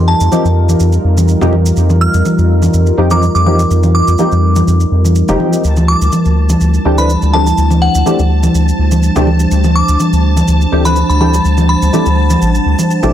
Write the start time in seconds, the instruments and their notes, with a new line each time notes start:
Already playing: analog synth bass F2, ambient pad G3 D#4 F4 A#4
0.08 synth bell A5
0.20 analog synth bass F2, maracas
0.31 synth stab F3 A#3 C4 D#4 G4, high conga, maracas
0.45 analog synth bass F2, maracas
0.69 high conga, maracas
0.80 analog synth bass F2, maracas
0.92 maracas
1.04 analog synth bass F2
1.17 high conga, maracas
1.28 maracas
1.41 analog synth bass F2, synth stab F3 A#3 C4 D#4 G4, low conga, maracas
1.53 high conga
1.66 maracas
1.77 analog synth bass F2, maracas
1.90 high conga, maracas
2.01 synth bell F6
2.14 analog synth bass F2, maracas
2.25 high conga, maracas
2.38 analog synth bass F2, maracas
2.62 high conga, maracas
2.74 analog synth bass F2, maracas
2.86 maracas
2.98 analog synth bass F2, synth stab F3 A#3 C4 D#4 G4
3.11 synth stab F3 A#3 C4 D#4 A#4, synth bell D6, high conga, maracas
3.23 maracas
3.35 analog synth bass F2, synth bell D6, maracas
3.46 synth stab F3 A#3 C4 D#4 G4, synth bell D6, high conga
3.59 maracas
3.70 analog synth bass F2, maracas
3.83 high conga, maracas
3.95 synth bell D6
4.08 analog synth bass F2, maracas
4.18 synth stab F3 A#3 C4 D#4 G4, high conga, maracas
4.32 analog synth bass F2, maracas
4.56 high conga, maracas
4.67 analog synth bass F2, maracas
4.80 maracas
4.92 analog synth bass F2
5.05 high conga, maracas
5.15 maracas
5.28 analog synth bass F1, synth stab F3 A#3 C4 D#4 G4, low conga, maracas
5.40 high conga
5.53 maracas
5.64 analog synth bass D2, ambient pad G3 D4 E4 C5, string machine A5, maracas
5.76 high conga, maracas
5.88 synth bell D6
6.01 analog synth bass D2, maracas
6.12 high conga, maracas
6.25 analog synth bass D2, maracas
6.49 high conga, maracas
6.61 analog synth bass D2, maracas
6.74 maracas
6.85 analog synth bass D2, synth stab E3 A3 C4 D4 G4
6.98 synth stab E3 A3 C4 D4 B4, synth bell B5, high conga, maracas
7.09 maracas
7.22 analog synth bass D2, maracas
7.33 synth stab E3 A3 C4 D4 G4, synth bell A5, high conga
7.46 synth bell A5, maracas
7.58 analog synth bass D2, maracas
7.71 high conga, maracas
7.82 synth bell F#5
7.95 analog synth bass D2, maracas
8.06 synth stab E3 A3 C4 D4 G4, high conga, maracas
8.19 analog synth bass D2, maracas
8.43 high conga, maracas
8.55 analog synth bass D2, maracas
8.68 maracas
8.79 analog synth bass D2
8.91 high conga, maracas
9.03 maracas
9.16 analog synth bass D2, synth stab E3 A3 C4 D4 G4, low conga, maracas
9.27 high conga
9.40 maracas
9.51 analog synth bass D2, ambient pad F#5, maracas
9.64 high conga, maracas
9.76 synth bell D6
9.88 analog synth bass D2, maracas
10.00 high conga, maracas
10.13 analog synth bass D2, maracas
10.37 high conga, maracas
10.48 analog synth bass D2, maracas
10.61 maracas
10.72 analog synth bass D2, synth stab E3 A3 C4 D4 G4
10.85 synth stab E3 A3 C4 D4 B4, synth bell B5, high conga, maracas
10.96 maracas
11.09 analog synth bass D2, synth bell B5, maracas
11.20 synth stab E3 A3 C4 D4 G4, synth bell B5, high conga
11.34 maracas
11.45 analog synth bass D2, maracas
11.57 high conga, maracas
11.69 synth bell B5
11.82 analog synth bass D2, maracas
11.93 synth stab E3 A3 C4 D4 G4, high conga, maracas
12.06 analog synth bass D2, maracas
12.30 high conga, maracas
12.42 analog synth bass A1, maracas
12.55 maracas
12.66 analog synth bass D2
12.79 high conga, maracas
12.91 maracas
13.03 analog synth bass A1, synth stab E3 A3 C4 D4 G4, low conga, maracas